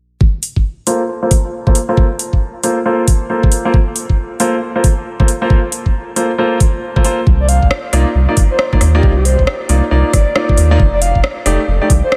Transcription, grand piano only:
0.87 1.01 A#3 medium
0.87 1.01 F4 medium
0.87 1.01 A4 medium
0.87 1.01 C5 medium
1.22 1.31 A#3 medium
1.22 1.31 F4 medium
1.22 1.31 A4 medium
1.22 1.31 C5 medium
1.67 1.75 A#3 medium
1.67 1.75 F4 medium
1.67 1.75 A4 medium
1.67 1.75 C5 medium
1.89 2.06 A#3 medium
1.89 2.06 F4 medium
1.89 2.06 A4 medium
1.89 2.06 C5 loud
2.63 2.77 A#3 medium
2.63 2.77 F4 medium
2.63 2.77 A4 medium
2.63 2.77 C5 medium
2.86 3.04 A#3 medium
2.86 3.04 F4 medium
2.86 3.04 A4 medium
2.86 3.04 C5 medium
3.30 3.62 A#3 medium
3.30 3.62 F4 medium
3.30 3.62 A4 medium
3.30 3.62 C5 medium
3.65 3.74 A#3 medium
3.65 3.74 F4 medium
3.65 3.74 A4 medium
3.65 3.74 C5 loud
4.40 4.54 A#3 medium
4.40 4.54 F4 medium
4.40 4.54 A4 medium
4.40 4.54 C5 medium
4.76 4.84 A#3 medium
4.76 4.84 F4 medium
4.76 4.84 A4 medium
4.76 4.84 C5 medium
5.20 5.28 A#3 medium
5.20 5.28 F4 medium
5.20 5.28 A4 medium
5.20 5.28 C5 medium
5.42 5.58 A#3 medium
5.42 5.59 F4 medium
5.42 5.58 A4 medium
5.42 5.59 C5 loud
6.16 6.30 A#3 medium
6.16 6.30 F4 medium
6.16 6.30 A4 medium
6.16 6.30 C5 medium
6.38 6.57 A#3 medium
6.38 6.57 F4 medium
6.38 6.57 A4 medium
6.38 6.57 C5 medium
6.96 7.03 A#3 medium
6.96 7.03 F4 medium
6.96 7.03 A4 medium
6.96 7.03 C5 medium
7.05 7.18 A#3 medium
7.05 7.18 F4 medium
7.05 7.18 A4 medium
7.05 7.18 C5 loud
7.93 8.07 A#3 medium
7.93 8.07 D#4 medium
7.93 8.07 F4 medium
7.93 8.07 D5 medium
8.29 8.37 A#3 medium
8.29 8.37 D#4 medium
8.29 8.37 F4 medium
8.29 8.37 D5 medium
8.73 8.81 A#3 medium
8.73 8.81 D#4 medium
8.73 8.81 F4 medium
8.73 8.81 D5 medium
8.95 9.11 A#3 medium
8.95 9.11 D#4 medium
8.95 9.11 F4 medium
8.95 9.11 D5 loud
9.69 9.83 A#3 medium
9.69 9.83 D#4 medium
9.69 9.83 F4 medium
9.69 9.83 D5 medium
9.91 10.10 A#3 medium
9.91 10.10 D#4 medium
9.91 10.10 F4 medium
9.91 10.10 D5 medium
10.36 10.68 A#3 medium
10.36 10.68 D#4 medium
10.36 10.68 F4 medium
10.36 10.68 D5 medium
10.71 10.79 A#3 medium
10.71 10.79 D#4 medium
10.71 10.79 F4 medium
10.71 10.79 D5 loud
11.46 11.60 A3 medium
11.46 11.59 D#4 medium
11.46 11.59 G4 medium
11.46 11.60 D5 medium
11.82 11.90 A3 medium
11.82 11.90 D#4 medium
11.82 11.90 G4 medium
11.82 11.90 D5 medium

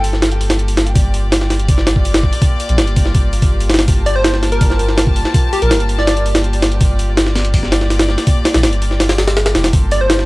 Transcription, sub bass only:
0.00 0.94 G1 medium
0.96 2.31 G1 loud
2.69 2.80 A#1 medium
2.78 3.87 G1 loud
3.88 5.24 G1 loud
5.62 5.72 A#1 medium
5.71 6.79 G1 loud
6.81 8.17 G1 loud
8.55 8.65 A#1 medium
8.64 9.54 G1 medium
9.55 9.72 F1 loud
9.73 10.26 G1 loud

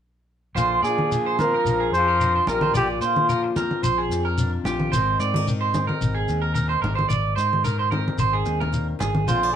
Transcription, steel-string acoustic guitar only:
0.57 1.93 A#2 medium
0.57 0.84 D4 medium
0.85 2.21 D4 soft
1.12 2.72 F3 medium
1.40 2.78 C4 medium
2.22 2.73 D4 medium
2.50 2.74 F4 medium
2.75 4.11 A#2 medium
2.75 4.66 F4 medium
3.03 4.39 D4 soft
3.30 4.90 F3 medium
3.57 4.94 C4 soft
4.12 4.93 F2 medium
4.40 4.91 D4 medium
4.67 4.94 F4 medium
4.93 6.28 G#2 medium
4.93 5.47 D#3 medium
4.93 5.21 C4 medium
4.93 5.21 D#4 medium
4.93 muted steel-string acoustic guitar stroke medium
5.21 5.36 C4 medium
5.36 6.55 D#4 soft
5.48 7.63 D#3 medium
5.75 7.92 C4 medium
6.29 7.08 G#2 medium
6.57 7.08 D#4 medium
6.84 7.08 G4 medium
7.10 muted steel-string acoustic guitar stroke medium
7.38 9.26 D#4 medium
7.64 9.28 D#3 medium
7.92 9.28 C4 soft
8.46 8.72 G#2 medium
8.72 8.99 G2 medium
8.99 9.27 G#2 medium
9.28 9.56 A#2 medium
9.28 9.43 C4 medium
9.43 9.54 D4 medium

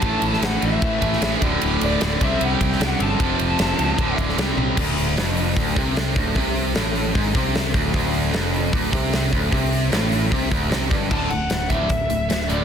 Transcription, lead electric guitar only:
0.00 0.38 A5 loud
0.45 0.64 F#5 medium
0.63 1.38 E5 medium
1.84 2.03 D5 medium
2.04 2.23 D5 medium
2.23 2.42 E5 medium
2.44 2.87 G5 medium
2.87 3.02 F#5 medium
3.03 4.16 A5 loud
11.12 11.30 A5 medium
11.30 11.71 F#5 medium
11.68 12.45 E5 medium
12.48 12.64 D5 medium

